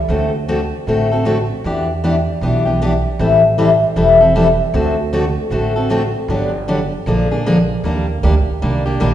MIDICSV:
0, 0, Header, 1, 4, 480
1, 0, Start_track
1, 0, Tempo, 386847
1, 115, Time_signature, 4, 2, 24, 8
1, 11343, End_track
2, 0, Start_track
2, 0, Title_t, "Steel-string acoustic guitar"
2, 0, Program_c, 0, 25
2, 115, Note_on_c, 0, 50, 58
2, 119, Note_on_c, 0, 57, 62
2, 124, Note_on_c, 0, 60, 62
2, 131, Note_on_c, 0, 69, 61
2, 133, Note_on_c, 0, 66, 61
2, 376, Note_off_c, 0, 50, 0
2, 378, Note_off_c, 0, 57, 0
2, 381, Note_off_c, 0, 60, 0
2, 384, Note_off_c, 0, 69, 0
2, 385, Note_off_c, 0, 66, 0
2, 601, Note_on_c, 0, 50, 83
2, 604, Note_on_c, 0, 57, 73
2, 606, Note_on_c, 0, 60, 82
2, 607, Note_on_c, 0, 66, 82
2, 609, Note_on_c, 0, 69, 78
2, 736, Note_off_c, 0, 50, 0
2, 738, Note_off_c, 0, 57, 0
2, 739, Note_off_c, 0, 60, 0
2, 740, Note_off_c, 0, 66, 0
2, 740, Note_off_c, 0, 69, 0
2, 1090, Note_on_c, 0, 50, 57
2, 1097, Note_on_c, 0, 57, 66
2, 1097, Note_on_c, 0, 66, 68
2, 1100, Note_on_c, 0, 69, 64
2, 1101, Note_on_c, 0, 60, 62
2, 1344, Note_off_c, 0, 50, 0
2, 1347, Note_off_c, 0, 57, 0
2, 1347, Note_off_c, 0, 66, 0
2, 1349, Note_off_c, 0, 60, 0
2, 1349, Note_off_c, 0, 69, 0
2, 1384, Note_on_c, 0, 69, 59
2, 1397, Note_on_c, 0, 66, 46
2, 1404, Note_on_c, 0, 60, 44
2, 1550, Note_off_c, 0, 60, 0
2, 1552, Note_on_c, 0, 50, 76
2, 1553, Note_off_c, 0, 66, 0
2, 1555, Note_off_c, 0, 69, 0
2, 1558, Note_on_c, 0, 57, 78
2, 1565, Note_on_c, 0, 60, 78
2, 1568, Note_on_c, 0, 66, 79
2, 1568, Note_on_c, 0, 69, 86
2, 1692, Note_off_c, 0, 50, 0
2, 1695, Note_off_c, 0, 57, 0
2, 1699, Note_off_c, 0, 60, 0
2, 1700, Note_off_c, 0, 66, 0
2, 1700, Note_off_c, 0, 69, 0
2, 2048, Note_on_c, 0, 52, 62
2, 2058, Note_on_c, 0, 59, 65
2, 2061, Note_on_c, 0, 62, 57
2, 2064, Note_on_c, 0, 67, 70
2, 2303, Note_off_c, 0, 52, 0
2, 2308, Note_off_c, 0, 59, 0
2, 2310, Note_off_c, 0, 62, 0
2, 2311, Note_off_c, 0, 67, 0
2, 2527, Note_on_c, 0, 52, 74
2, 2530, Note_on_c, 0, 59, 77
2, 2536, Note_on_c, 0, 62, 87
2, 2542, Note_on_c, 0, 67, 82
2, 2660, Note_off_c, 0, 52, 0
2, 2662, Note_off_c, 0, 59, 0
2, 2664, Note_off_c, 0, 62, 0
2, 2667, Note_off_c, 0, 67, 0
2, 3007, Note_on_c, 0, 52, 61
2, 3015, Note_on_c, 0, 59, 68
2, 3017, Note_on_c, 0, 67, 68
2, 3019, Note_on_c, 0, 62, 69
2, 3263, Note_off_c, 0, 52, 0
2, 3267, Note_off_c, 0, 59, 0
2, 3268, Note_off_c, 0, 67, 0
2, 3269, Note_off_c, 0, 62, 0
2, 3294, Note_on_c, 0, 67, 61
2, 3309, Note_on_c, 0, 62, 48
2, 3316, Note_on_c, 0, 59, 51
2, 3470, Note_off_c, 0, 67, 0
2, 3477, Note_off_c, 0, 62, 0
2, 3481, Note_off_c, 0, 59, 0
2, 3494, Note_on_c, 0, 52, 85
2, 3500, Note_on_c, 0, 59, 84
2, 3503, Note_on_c, 0, 62, 86
2, 3505, Note_on_c, 0, 67, 94
2, 3624, Note_off_c, 0, 52, 0
2, 3627, Note_off_c, 0, 59, 0
2, 3629, Note_off_c, 0, 62, 0
2, 3629, Note_off_c, 0, 67, 0
2, 3962, Note_on_c, 0, 52, 63
2, 3969, Note_on_c, 0, 55, 61
2, 3973, Note_on_c, 0, 60, 63
2, 3979, Note_on_c, 0, 64, 62
2, 3979, Note_on_c, 0, 69, 67
2, 4221, Note_off_c, 0, 52, 0
2, 4224, Note_off_c, 0, 55, 0
2, 4226, Note_off_c, 0, 60, 0
2, 4229, Note_off_c, 0, 64, 0
2, 4229, Note_off_c, 0, 69, 0
2, 4442, Note_on_c, 0, 52, 85
2, 4449, Note_on_c, 0, 55, 82
2, 4449, Note_on_c, 0, 60, 76
2, 4452, Note_on_c, 0, 64, 84
2, 4452, Note_on_c, 0, 69, 87
2, 4578, Note_off_c, 0, 52, 0
2, 4582, Note_off_c, 0, 55, 0
2, 4582, Note_off_c, 0, 60, 0
2, 4583, Note_off_c, 0, 64, 0
2, 4583, Note_off_c, 0, 69, 0
2, 4916, Note_on_c, 0, 52, 68
2, 4919, Note_on_c, 0, 60, 67
2, 4921, Note_on_c, 0, 55, 68
2, 4926, Note_on_c, 0, 64, 74
2, 4929, Note_on_c, 0, 69, 67
2, 5178, Note_off_c, 0, 52, 0
2, 5180, Note_off_c, 0, 55, 0
2, 5180, Note_off_c, 0, 60, 0
2, 5183, Note_off_c, 0, 64, 0
2, 5184, Note_off_c, 0, 69, 0
2, 5218, Note_on_c, 0, 69, 56
2, 5231, Note_on_c, 0, 64, 47
2, 5241, Note_on_c, 0, 60, 44
2, 5390, Note_off_c, 0, 60, 0
2, 5392, Note_off_c, 0, 69, 0
2, 5399, Note_off_c, 0, 64, 0
2, 5403, Note_on_c, 0, 52, 80
2, 5405, Note_on_c, 0, 60, 82
2, 5408, Note_on_c, 0, 55, 83
2, 5416, Note_on_c, 0, 64, 79
2, 5417, Note_on_c, 0, 69, 95
2, 5539, Note_off_c, 0, 52, 0
2, 5540, Note_off_c, 0, 60, 0
2, 5541, Note_off_c, 0, 55, 0
2, 5545, Note_off_c, 0, 64, 0
2, 5546, Note_off_c, 0, 69, 0
2, 5882, Note_on_c, 0, 50, 59
2, 5884, Note_on_c, 0, 60, 72
2, 5886, Note_on_c, 0, 57, 65
2, 5890, Note_on_c, 0, 66, 73
2, 5894, Note_on_c, 0, 69, 67
2, 6141, Note_off_c, 0, 50, 0
2, 6142, Note_off_c, 0, 60, 0
2, 6143, Note_off_c, 0, 57, 0
2, 6145, Note_off_c, 0, 66, 0
2, 6147, Note_off_c, 0, 69, 0
2, 6361, Note_on_c, 0, 50, 83
2, 6369, Note_on_c, 0, 57, 85
2, 6371, Note_on_c, 0, 60, 80
2, 6374, Note_on_c, 0, 69, 85
2, 6376, Note_on_c, 0, 66, 85
2, 6498, Note_off_c, 0, 50, 0
2, 6502, Note_off_c, 0, 57, 0
2, 6503, Note_off_c, 0, 60, 0
2, 6504, Note_off_c, 0, 69, 0
2, 6506, Note_off_c, 0, 66, 0
2, 6839, Note_on_c, 0, 50, 60
2, 6846, Note_on_c, 0, 57, 69
2, 6851, Note_on_c, 0, 60, 64
2, 6851, Note_on_c, 0, 66, 67
2, 6857, Note_on_c, 0, 69, 75
2, 7100, Note_off_c, 0, 50, 0
2, 7103, Note_off_c, 0, 57, 0
2, 7106, Note_off_c, 0, 60, 0
2, 7106, Note_off_c, 0, 66, 0
2, 7109, Note_off_c, 0, 69, 0
2, 7145, Note_on_c, 0, 69, 59
2, 7156, Note_on_c, 0, 66, 55
2, 7167, Note_on_c, 0, 60, 47
2, 7316, Note_off_c, 0, 66, 0
2, 7316, Note_off_c, 0, 69, 0
2, 7316, Note_on_c, 0, 50, 84
2, 7317, Note_off_c, 0, 60, 0
2, 7323, Note_on_c, 0, 57, 87
2, 7331, Note_on_c, 0, 66, 82
2, 7332, Note_on_c, 0, 60, 86
2, 7338, Note_on_c, 0, 69, 82
2, 7455, Note_off_c, 0, 50, 0
2, 7459, Note_off_c, 0, 57, 0
2, 7463, Note_off_c, 0, 66, 0
2, 7464, Note_off_c, 0, 60, 0
2, 7466, Note_off_c, 0, 69, 0
2, 7810, Note_on_c, 0, 50, 62
2, 7813, Note_on_c, 0, 54, 69
2, 7817, Note_on_c, 0, 59, 61
2, 7820, Note_on_c, 0, 62, 69
2, 7821, Note_on_c, 0, 67, 70
2, 8065, Note_off_c, 0, 50, 0
2, 8067, Note_off_c, 0, 54, 0
2, 8068, Note_off_c, 0, 59, 0
2, 8070, Note_off_c, 0, 62, 0
2, 8070, Note_off_c, 0, 67, 0
2, 8287, Note_on_c, 0, 50, 73
2, 8293, Note_on_c, 0, 54, 82
2, 8295, Note_on_c, 0, 59, 75
2, 8296, Note_on_c, 0, 67, 78
2, 8300, Note_on_c, 0, 62, 85
2, 8421, Note_off_c, 0, 50, 0
2, 8424, Note_off_c, 0, 54, 0
2, 8424, Note_off_c, 0, 59, 0
2, 8425, Note_off_c, 0, 67, 0
2, 8427, Note_off_c, 0, 62, 0
2, 8774, Note_on_c, 0, 50, 63
2, 8774, Note_on_c, 0, 58, 66
2, 8776, Note_on_c, 0, 53, 65
2, 8784, Note_on_c, 0, 62, 67
2, 8787, Note_on_c, 0, 68, 69
2, 9026, Note_off_c, 0, 58, 0
2, 9027, Note_off_c, 0, 50, 0
2, 9028, Note_off_c, 0, 53, 0
2, 9032, Note_off_c, 0, 62, 0
2, 9033, Note_off_c, 0, 68, 0
2, 9076, Note_on_c, 0, 68, 56
2, 9080, Note_on_c, 0, 62, 50
2, 9098, Note_on_c, 0, 58, 46
2, 9241, Note_off_c, 0, 68, 0
2, 9243, Note_off_c, 0, 62, 0
2, 9246, Note_off_c, 0, 58, 0
2, 9261, Note_on_c, 0, 58, 81
2, 9263, Note_on_c, 0, 53, 88
2, 9265, Note_on_c, 0, 50, 83
2, 9268, Note_on_c, 0, 62, 95
2, 9273, Note_on_c, 0, 68, 96
2, 9387, Note_off_c, 0, 58, 0
2, 9389, Note_off_c, 0, 50, 0
2, 9389, Note_off_c, 0, 53, 0
2, 9391, Note_off_c, 0, 62, 0
2, 9393, Note_off_c, 0, 68, 0
2, 9739, Note_on_c, 0, 51, 54
2, 9742, Note_on_c, 0, 55, 56
2, 9745, Note_on_c, 0, 58, 69
2, 9752, Note_on_c, 0, 62, 67
2, 9753, Note_on_c, 0, 67, 62
2, 9989, Note_off_c, 0, 51, 0
2, 9990, Note_off_c, 0, 55, 0
2, 9992, Note_off_c, 0, 58, 0
2, 9995, Note_off_c, 0, 62, 0
2, 9996, Note_off_c, 0, 67, 0
2, 10213, Note_on_c, 0, 51, 75
2, 10216, Note_on_c, 0, 58, 82
2, 10218, Note_on_c, 0, 55, 80
2, 10220, Note_on_c, 0, 62, 92
2, 10224, Note_on_c, 0, 67, 82
2, 10343, Note_off_c, 0, 51, 0
2, 10344, Note_off_c, 0, 58, 0
2, 10345, Note_off_c, 0, 55, 0
2, 10347, Note_off_c, 0, 62, 0
2, 10348, Note_off_c, 0, 67, 0
2, 10695, Note_on_c, 0, 55, 67
2, 10698, Note_on_c, 0, 51, 60
2, 10699, Note_on_c, 0, 58, 67
2, 10700, Note_on_c, 0, 67, 68
2, 10703, Note_on_c, 0, 62, 70
2, 10946, Note_off_c, 0, 55, 0
2, 10948, Note_off_c, 0, 51, 0
2, 10948, Note_off_c, 0, 58, 0
2, 10949, Note_off_c, 0, 67, 0
2, 10950, Note_off_c, 0, 62, 0
2, 10989, Note_on_c, 0, 67, 62
2, 11000, Note_on_c, 0, 62, 49
2, 11003, Note_on_c, 0, 58, 51
2, 11157, Note_off_c, 0, 67, 0
2, 11161, Note_off_c, 0, 58, 0
2, 11162, Note_off_c, 0, 62, 0
2, 11167, Note_on_c, 0, 51, 82
2, 11174, Note_on_c, 0, 55, 87
2, 11176, Note_on_c, 0, 58, 88
2, 11179, Note_on_c, 0, 62, 92
2, 11181, Note_on_c, 0, 67, 86
2, 11299, Note_off_c, 0, 51, 0
2, 11303, Note_off_c, 0, 55, 0
2, 11304, Note_off_c, 0, 58, 0
2, 11305, Note_off_c, 0, 62, 0
2, 11307, Note_off_c, 0, 67, 0
2, 11343, End_track
3, 0, Start_track
3, 0, Title_t, "Upright bass"
3, 0, Program_c, 1, 32
3, 104, Note_on_c, 1, 38, 85
3, 877, Note_off_c, 1, 38, 0
3, 1079, Note_on_c, 1, 33, 78
3, 1847, Note_off_c, 1, 33, 0
3, 2039, Note_on_c, 1, 40, 84
3, 2806, Note_off_c, 1, 40, 0
3, 2995, Note_on_c, 1, 35, 78
3, 3764, Note_off_c, 1, 35, 0
3, 3962, Note_on_c, 1, 33, 84
3, 4729, Note_off_c, 1, 33, 0
3, 4913, Note_on_c, 1, 28, 80
3, 5683, Note_off_c, 1, 28, 0
3, 5876, Note_on_c, 1, 38, 90
3, 6645, Note_off_c, 1, 38, 0
3, 6829, Note_on_c, 1, 33, 74
3, 7601, Note_off_c, 1, 33, 0
3, 7796, Note_on_c, 1, 31, 85
3, 8565, Note_off_c, 1, 31, 0
3, 8762, Note_on_c, 1, 34, 84
3, 9528, Note_off_c, 1, 34, 0
3, 9724, Note_on_c, 1, 39, 83
3, 10186, Note_off_c, 1, 39, 0
3, 10214, Note_on_c, 1, 38, 85
3, 10482, Note_off_c, 1, 38, 0
3, 10697, Note_on_c, 1, 36, 77
3, 11152, Note_off_c, 1, 36, 0
3, 11174, Note_on_c, 1, 34, 86
3, 11343, Note_off_c, 1, 34, 0
3, 11343, End_track
4, 0, Start_track
4, 0, Title_t, "Muted upright bass strokes"
4, 10502, Note_on_c, 9, 29, 34
4, 10626, Note_off_c, 9, 29, 0
4, 11343, End_track
0, 0, End_of_file